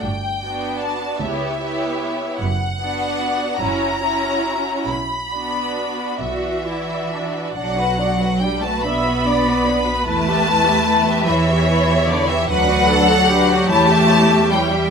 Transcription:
<<
  \new Staff \with { instrumentName = "Violin section" } { \time 6/8 \key b \minor \tempo 4. = 49 g''4 a''8 e''4. | fis''4. ais''4. | b''4. e''4. | fis''4 g''16 a''16 b''4. |
a''4. e''4 d''16 e''16 | fis''4. a''4 g''8 | }
  \new Staff \with { instrumentName = "Violin section" } { \time 6/8 \key b \minor r8 <fis' d''>4 <g' cis''>8 <g' cis''>4 | r8 <fis' d''>4 <fis' cis''>8 <fis' cis''>4 | r8 <fis' d''>4. <fis' d''>4 | <d' d''>16 <fis' b'>16 <d' d''>16 <fis' b'>16 <d' d''>16 <fis' b'>16 <d' d''>16 <fis' b'>16 <d' d''>16 <fis' b'>16 <d' d''>16 <fis' b'>16 |
<e' b'>16 <g' e''>16 <e' b'>16 <g' e''>16 <e' b'>16 <g' e''>16 <e' b'>16 <g' e''>16 <e' b'>16 <g' e''>16 <e' b'>16 <g' e''>16 | <d' b'>16 <fis' d''>16 <d' b'>16 <fis' d''>16 <d' b'>16 <fis' d''>16 <e' cis''>16 <g' e''>16 <e' cis''>16 <g' e''>16 <e' cis''>16 <g' e''>16 | }
  \new Staff \with { instrumentName = "Viola section" } { \time 6/8 \key b \minor r8 <b d'>4 <b e'>8 <b e'>4 | r8 <b d'>4 <cis' e'>8 <cis' e'>4 | r8 <b d'>4 fis'8 e'8 d'8 | r4. e''8 d''8 b'8~ |
b'4. cis''4. | b'8 a'8 g'2 | }
  \new Staff \with { instrumentName = "Cello section" } { \clef bass \time 6/8 \key b \minor g,4. cis,4. | fis,4. fis,4. | b,4. <b, e>4. | fis4 g16 a16 b4. |
a4. e4 d16 e16 | fis4. a4 g8 | }
  \new Staff \with { instrumentName = "Double bass section" } { \clef bass \time 6/8 \key b \minor g,,4. cis,4. | fis,,4. fis,,4. | b,,4. b,,4. | b,,4. b,,4. |
e,4. e,4. | d,4. e,4. | }
>>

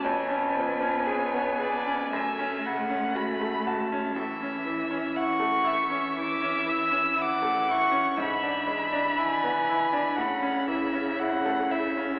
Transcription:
<<
  \new Staff \with { instrumentName = "Violin" } { \time 4/4 \key a \major \tempo 4 = 59 gis''2.~ gis''8 r8 | r4 cis'''4 d'''8 e'''8 d'''8 cis'''8 | b''2.~ b''8 r8 | }
  \new Staff \with { instrumentName = "Violin" } { \time 4/4 \key a \major cis''8 b'8 cis''8 d''8 e''8 fis''8 b''8 a''8 | e''4 fis''8 e''4. fis''4 | e''4 gis''4 fis''8 e''8 fis''8 e''8 | }
  \new Staff \with { instrumentName = "Grand piano" } { \time 4/4 \key a \major eis,16 cis'16 eis16 cis'16 gis'16 b16 gis'16 cis'16 fis,16 cis'16 cis16 cis'16 fis'16 a16 fis'16 cis'16 | a,16 cis'16 e16 cis'16 e'16 a16 e'16 cis'16 e16 cis'16 e16 cis'16 e'16 a16 e'16 cis'16 | gis,16 d'16 gis16 d'16 e'16 b16 e'16 d'16 a,16 cis'16 e16 cis'16 e'16 a16 e'16 cis'16 | }
  \new Staff \with { instrumentName = "Cello" } { \clef bass \time 4/4 \key a \major b2 a2 | e4 e2. | e2 cis2 | }
>>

